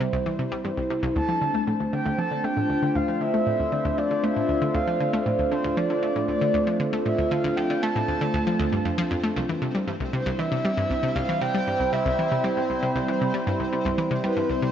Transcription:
0.00 0.07 C3 medium
0.00 1.16 G3 medium
0.00 1.14 C4 medium
0.00 2.48 C4 medium
0.00 1.16 E4 medium
0.00 1.14 C5 medium
0.00 1.16 C5 medium
0.13 0.17 C2 medium
0.26 0.36 E3 medium
0.39 0.46 C3 medium
0.52 0.59 G3 medium
0.65 0.71 G2 medium
0.77 0.81 C2 medium
0.90 0.97 C3 medium
1.03 1.07 C2 loud
1.15 1.20 D2 medium
1.15 9.36 A3 medium
1.15 14.72 C4 medium
1.15 14.72 C5 medium
1.15 1.64 A5 loud
1.25 1.39 F3 medium
1.25 11.08 D4 medium
1.37 9.36 C5 medium
1.42 1.48 D3 medium
1.54 1.61 A3 medium
1.67 1.74 A2 medium
1.67 9.36 F4 medium
1.80 1.84 D2 medium
1.93 2.00 D3 medium
1.93 2.20 G5 medium
2.06 2.10 D2 loud
2.18 2.29 F3 medium
2.18 2.46 A5 loud
2.31 2.38 D3 medium
2.44 2.51 A3 medium
2.44 2.97 G5 loud
2.57 2.64 A2 medium
2.70 2.74 D2 medium
2.83 2.89 D3 medium
2.95 2.99 D2 medium
2.95 3.20 F5 loud
3.08 3.18 F3 medium
3.21 3.28 D3 medium
3.21 3.99 E5 loud
3.34 3.41 A3 medium
3.47 3.53 A2 medium
3.60 3.64 D2 medium
3.72 3.79 D3 medium
3.85 3.89 D2 loud
3.98 4.08 F3 medium
3.98 4.26 D5 medium
4.11 4.18 D3 medium
4.24 4.30 A3 medium
4.24 4.74 E5 loud
4.36 4.43 A2 medium
4.49 4.53 D2 medium
4.62 4.69 D3 medium
4.74 4.79 D2 medium
4.74 5.11 F5 medium
4.87 4.98 F3 medium
5.00 5.07 D3 medium
5.13 5.20 A3 medium
5.26 5.33 A2 medium
5.39 5.43 D2 medium
5.51 5.58 D3 medium
5.51 5.79 C5 loud
5.64 5.68 D2 medium
5.77 5.87 F3 medium
5.77 6.28 D5 loud
5.90 5.97 D3 medium
6.03 6.10 A3 medium
6.16 6.23 A2 medium
6.28 6.33 D2 medium
6.28 6.76 D5 loud
6.41 6.48 D3 medium
6.54 6.58 D2 medium
6.67 6.77 F3 medium
6.80 6.87 D3 medium
6.93 7.00 A3 medium
7.06 7.12 A2 medium
7.06 7.33 E5 medium
7.18 7.22 D2 medium
7.31 7.38 D3 medium
7.31 7.58 F5 loud
7.44 7.48 D2 loud
7.56 7.67 F3 medium
7.56 7.84 G5 loud
7.70 7.77 D3 medium
7.82 7.89 A3 medium
7.82 8.85 A5 loud
7.96 8.02 A2 medium
8.08 8.12 D2 medium
8.21 8.28 D3 medium
8.34 8.38 D2 medium
8.47 8.57 F3 medium
8.59 8.66 D2 medium
8.72 8.79 G2 medium
8.85 8.92 F2 medium
8.98 9.02 F3 loud
9.11 9.15 F2 medium
9.23 9.30 A3 medium
9.36 9.40 C2 medium
9.36 14.72 G3 medium
9.49 9.59 E3 medium
9.60 9.69 C3 medium
9.60 14.72 C4 medium
9.69 14.72 E4 medium
9.75 9.82 G3 medium
9.88 9.94 G2 medium
10.00 10.04 C2 medium
10.13 10.20 C3 medium
10.13 10.41 C5 medium
10.13 14.72 C5 medium
10.26 10.30 C2 loud
10.39 10.49 E3 medium
10.39 11.17 E5 loud
10.52 10.59 C3 medium
10.65 10.71 G3 medium
10.77 10.84 G2 medium
10.90 10.94 C2 medium
11.03 11.10 C3 medium
11.15 11.20 C2 loud
11.15 11.41 F5 loud
11.29 11.39 E3 medium
11.41 11.48 C3 medium
11.41 11.94 G5 loud
11.54 11.61 G3 medium
11.67 11.74 G2 medium
11.80 11.84 C2 medium
11.93 12.00 C3 medium
11.93 12.46 E5 loud
12.06 12.10 C2 medium
12.19 12.29 E3 medium
12.32 12.38 C3 medium
12.44 12.51 G3 medium
12.44 13.21 C5 medium
12.57 12.64 G2 medium
12.70 12.74 C2 medium
12.83 12.89 C3 medium
12.96 13.00 C2 loud
13.08 13.19 E3 medium
13.21 13.28 C3 medium
13.34 13.41 G3 medium
13.47 13.54 G2 medium
13.60 13.64 C2 medium
13.73 13.79 C3 medium
13.85 13.89 C2 loud
13.98 14.08 E3 medium
14.11 14.18 C3 medium
14.24 14.30 G3 medium
14.24 14.51 B4 medium
14.37 14.43 G2 medium
14.49 14.53 C2 medium
14.49 14.72 C5 medium
14.62 14.69 C3 medium

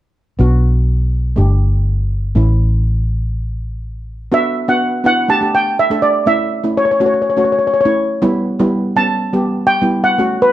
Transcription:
0.39 1.35 B1 medium
0.39 1.35 B3 medium
0.39 1.36 D4 medium
0.39 1.36 F#4 medium
1.36 2.34 G1 medium
1.36 2.33 A3 medium
1.36 2.33 D4 medium
1.36 2.34 G4 medium
2.35 4.27 A1 medium
2.35 4.27 A3 medium
2.35 4.28 C#4 medium
2.35 4.28 E4 medium
4.32 4.53 B3 medium
4.32 4.54 D4 medium
4.32 4.54 F#4 medium
4.32 4.70 E5 medium
4.68 4.90 B3 medium
4.68 4.90 D4 medium
4.68 4.91 F#4 medium
4.68 5.05 F#5 medium
5.04 5.26 B3 medium
5.04 5.27 D4 medium
5.04 5.27 E4 medium
5.04 5.28 F#5 medium
5.28 5.39 A3 medium
5.28 5.39 D4 medium
5.28 5.39 G4 medium
5.28 5.55 A5 medium
5.41 5.70 A3 medium
5.41 5.71 D4 medium
5.41 5.71 G4 medium
5.55 5.77 G5 medium
5.79 6.04 E5 medium
5.90 6.12 A3 medium
5.90 6.13 D4 medium
5.90 6.13 A4 medium
6.02 6.28 D5 medium
6.26 6.49 A3 medium
6.26 6.49 C#4 medium
6.26 6.49 E4 medium
6.26 6.77 E5 medium
6.63 6.86 A3 medium
6.63 6.86 C#4 medium
6.63 6.86 E4 medium
6.77 6.84 C#5 medium
6.85 6.90 C#5 soft
6.91 6.98 C#5 soft
7.00 7.22 A3 medium
7.00 7.22 C#4 medium
7.00 7.23 F#4 medium
7.00 7.05 C#5 soft
7.06 7.13 C#5 medium
7.14 7.21 C#5 soft
7.22 7.28 C#5 soft
7.30 7.36 C#5 soft
7.37 7.66 A3 medium
7.37 7.66 C#4 medium
7.37 7.67 F#4 medium
7.37 7.43 C#5 soft
7.44 7.51 C#5 soft
7.52 7.58 C#5 soft
7.59 7.66 C#5 soft
7.67 7.72 C#5 soft
7.74 7.79 C#5 soft
7.81 7.88 C#5 medium
7.85 8.08 A3 medium
7.85 8.08 C#4 medium
7.85 8.08 E4 medium
8.22 8.44 G3 medium
8.22 8.44 B3 medium
8.22 8.45 E4 medium
8.59 8.81 G3 medium
8.59 8.82 B3 medium
8.59 8.82 E4 medium
8.96 9.18 G3 medium
8.96 9.18 B3 medium
8.96 9.18 C#4 medium
8.96 9.72 A5 medium
9.33 9.62 G3 medium
9.33 9.63 B3 medium
9.33 9.63 G4 medium
9.67 10.06 G5 medium
9.82 10.04 G3 medium
9.82 10.04 B3 medium
9.82 10.04 E4 medium
10.04 10.43 F#5 medium
10.18 10.41 A3 medium
10.18 10.41 C#4 medium
10.18 10.41 F#4 medium
10.42 10.53 B4 medium

